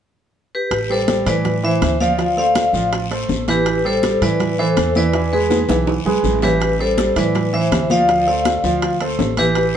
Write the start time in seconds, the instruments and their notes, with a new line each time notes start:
0.55 vibraphone G4 B4
0.71 upright bass A1, high bongo, high conga, high timbale, long guiro
0.90 grand piano G3 G4 A4, vibraphone A4 C5, high bongo, high conga
1.08 grand piano G3 G4 A4, high bongo, high conga, high timbale, short guiro
1.26 upright bass A2, grand piano E3 E4 E5, vibraphone B4 D5, high bongo, high conga, low conga, high timbale, short guiro
1.45 high bongo, high conga, low conga, high timbale, long guiro
1.63 grand piano E3 E4 E5, vibraphone C5 E5, high conga
1.82 upright bass D2, high bongo, low bongo, high conga, high timbale, short guiro
2.00 grand piano F3 F4 F5, vibraphone D5 F5, high bongo, high conga, short guiro
2.18 grand piano F3 F4, high bongo, high timbale, long guiro
2.37 grand piano A3 A4 C5, vibraphone D5 F5, high bongo, high conga
2.55 high bongo, high conga, high timbale, short guiro
2.73 upright bass A1, grand piano F3 F4 F5, high bongo, high conga, short guiro
2.92 high bongo, high conga, high timbale, long guiro
3.11 grand piano A3 A4 C5, high conga, high timbale
3.29 upright bass A1, high bongo, low bongo, high conga, short guiro
3.48 grand piano E3 E4 E5, vibraphone G4 B4, high bongo, high conga, high timbale, short guiro
3.66 high bongo, high timbale, long guiro
3.85 grand piano G3 G4 A4, vibraphone A4 C5, high bongo, high conga
4.03 grand piano G3 G4 A4, high bongo, high conga, high timbale, short guiro
4.21 upright bass A2, grand piano E3 E4 E5, vibraphone B4 D5, high conga, low conga, high timbale, short guiro
4.40 high bongo, high conga, low conga, high timbale, long guiro
4.59 grand piano E3 E4 E5, vibraphone A4 C5, high conga
4.77 upright bass E2, high bongo, low bongo, high conga, high timbale, short guiro
4.95 grand piano E3 E4 E5, vibraphone B4 D5, high bongo, high conga, short guiro
5.13 grand piano E3 E4 E5, high bongo, high conga, high timbale, long guiro
5.32 grand piano G#3 G#4 B4, vibraphone G#4 B4, high bongo, high conga
5.50 high bongo, high conga, high timbale, short guiro
5.69 upright bass B1, grand piano E3 E4 E5, high conga, high timbale, short guiro
5.87 high bongo, high timbale, long guiro
6.05 upright bass B1, grand piano G#3 G#4 B4, low conga
6.24 upright bass A1, high bongo, low bongo, low conga, short guiro
6.42 grand piano E3 E4 E5, vibraphone G4 B4, high bongo, low conga, low timbale, short guiro
6.60 high bongo, high conga, high timbale, long guiro
6.80 grand piano G3 G4 A4, vibraphone A4 C5, high bongo, high conga
6.98 grand piano G3 G4 A4, high bongo, high conga, high timbale, short guiro
7.16 upright bass A2, grand piano E3 E4 E5, vibraphone B4 D5, high conga, low conga, high timbale, short guiro
7.35 high bongo, high conga, low conga, high timbale, long guiro
7.53 grand piano E3 E4 E5, vibraphone C5 E5, high conga
7.71 upright bass D2, high bongo, low bongo, high conga, high timbale, low timbale, short guiro
7.90 grand piano F3 F4 F5, vibraphone D5 F5, high bongo, high conga, short guiro
8.08 grand piano F3 F4 F5, high bongo, high conga, high timbale, long guiro
8.27 grand piano A3 A4 C5, vibraphone D5 F5, high bongo, high conga
8.45 high bongo, high conga, high timbale, short guiro
8.64 upright bass D2, grand piano F3 F4 F5, high bongo, high conga, short guiro
8.82 high bongo, high conga, high timbale, long guiro
9.01 grand piano A3 A4 C5, high conga, high timbale
9.19 upright bass A1, high bongo, low bongo, high conga, low timbale, short guiro
9.37 grand piano E3 E4 E5, vibraphone G4 B4, high bongo, high conga, high timbale, short guiro
9.55 high bongo, high conga, high timbale, long guiro